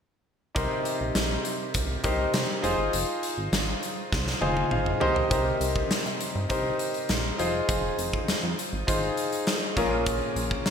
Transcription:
0.55 C2 C3 D#4 G4 A#4 C5, kick, closed hi-hat
0.85 closed hi-hat
1.01 A#1
1.15 A#1, snare, closed hi-hat
1.45 closed hi-hat
1.74 C2, kick, closed hi-hat
2.04 C2 D#4 G4 A#4 C5, kick, closed hi-hat
2.34 C3, snare, closed hi-hat
2.62 F1 D#4 F4 G#4 C5, closed hi-hat
2.78 G1
2.93 F1, closed hi-hat
3.23 closed hi-hat
3.38 G#1
3.52 G#1, snare, closed hi-hat
3.83 closed hi-hat
4.12 C2, kick, snare
4.27 snare
4.41 F1 D#4 F4 G#4 C5 G#5, high tom
4.57 high tom
4.71 G#1 F5, mid tom
4.86 mid tom
5.00 C2 D#4 G4 A#4 C5, floor tom
5.16 floor tom
5.30 C2 C3 D#4 G4 A#4 C5, kick, closed hi-hat
5.61 C2, closed hi-hat
5.76 kick
5.91 C3, snare, closed hi-hat
6.06 C3, closed hi-hat
6.20 closed hi-hat
6.35 G2
6.49 C2 D#4 G4 A#4 C5, kick, closed hi-hat
6.79 closed hi-hat
6.94 closed hi-hat
7.09 A#1, snare, closed hi-hat
7.38 F1 D#4 F4 G#4 C5, closed hi-hat
7.69 F1, kick, closed hi-hat
7.98 F1, closed hi-hat
8.13 kick
8.28 F2, snare, closed hi-hat
8.43 F2
8.59 closed hi-hat
8.73 G#1
8.87 G#1 D#4 F4 G#4 C5, kick, closed hi-hat
9.17 closed hi-hat
9.32 closed hi-hat
9.47 snare, closed hi-hat
9.76 A#1 A#2 C#4 F4 G#4 A#4, kick, closed hi-hat
10.06 kick, closed hi-hat
10.36 A#1, closed hi-hat
10.51 kick
10.66 A#2, snare, closed hi-hat

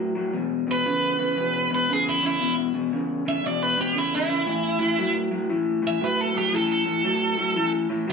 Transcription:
Already playing: A2 F#3
0.15 A2 F#3
0.33 E2 B2
0.67 E2 B2
0.71 B4
0.86 E2 C#3
1.18 E2 C#3
1.36 E2 B2
1.70 E2 B2
1.75 B4
1.89 E2 C#3 G#4
2.09 E4
2.22 E2 C#3
2.26 E4
2.41 E2 B2
2.74 E2 B2
2.93 E2 C#3
3.25 E2 C#3 E5
3.44 E2 B2 D5
3.63 B4
3.77 E2 B2
3.81 G4
3.95 E2 C#3 E4
4.15 E4
4.28 E2 C#3
4.46 A2 E3
4.79 A2 E3
4.98 A2 F#3
5.31 A2 F#3
5.49 A2 E3
5.82 A2 E3
5.87 E5
6.01 A2 F#3 B4
6.21 A4
6.34 A2 F#3 G4
6.53 A2 E3 A4
6.72 A4
6.85 A2 E3
7.04 A2 F#3
7.37 A2 F#3
7.56 A2 E3
7.89 A2 E3
8.07 A2 F#3

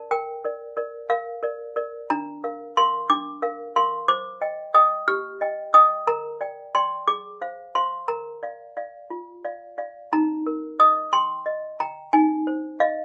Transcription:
0.11 A#4 G5
0.45 A#4 D5
0.77 A#4 D5
1.10 A#4 F5
1.43 A#4 D5
1.76 A#4 D5
2.10 D4 A#5
2.44 A#4 F5
2.77 A#4 F5 C6
3.10 D4 D6
3.42 A#4 F5
3.76 A#4 F5 C6
4.08 C5 D6
4.41 D#5 G5
4.74 D#5 G5 D#6
5.08 G4 F6
5.41 D#5 G5
5.74 D#5 G5 D#6
6.07 A#4 A#5
6.41 D5 G5
6.75 D5 G5 C6
7.08 G#4 D6
7.41 C5 F5
7.75 C5 F5 C6
8.08 A#4 A#5
8.43 D5 F5
8.77 D5 F5
9.10 F4
9.45 D5 F5
9.78 D5 F5
10.13 D#4 A#5
10.47 A#4
10.80 D#5 D#6
11.13 G5 C6
11.46 D#5
11.80 G5 A#5
12.13 D#4 G#5
12.47 C5
12.80 D#5 F5

